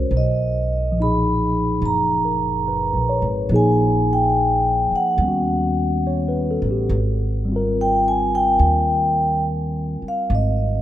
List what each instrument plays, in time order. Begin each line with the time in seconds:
Already playing: tine electric piano G#3 C#4 F#4 A#4 C5 C#5
0.11 upright bass B1
0.17 vibraphone D#5
0.92 tine electric piano F3
0.96 tine electric piano A#2 D#4
1.02 tine electric piano G#4, vibraphone B5
1.82 upright bass F#1, vibraphone A#5
2.25 tine electric piano A#4
2.68 tine electric piano B4
2.93 upright bass A#1
3.09 tine electric piano C#5
3.22 upright bass G#1
3.49 upright bass A#1, tine electric piano F3 A#3 D#4
3.54 tine electric piano G#4, vibraphone G#5
4.13 vibraphone G5
4.92 vibraphone F#5, muted upright bass stroke
5.17 upright bass D#2, tine electric piano G3 B3
5.24 tine electric piano C#4
5.28 tine electric piano F#4
6.07 tine electric piano C#5
6.28 tine electric piano B4
6.51 tine electric piano A4
6.62 upright bass A1
6.71 tine electric piano G4
6.89 upright bass G#1
7.45 tine electric piano G3 C4
7.52 tine electric piano F4 A#4
7.81 vibraphone G5
8.08 vibraphone G#5
8.35 vibraphone G5
8.59 upright bass D#2
10.02 muted upright bass stroke
10.08 vibraphone F5
10.30 upright bass G#1
10.35 vibraphone D#5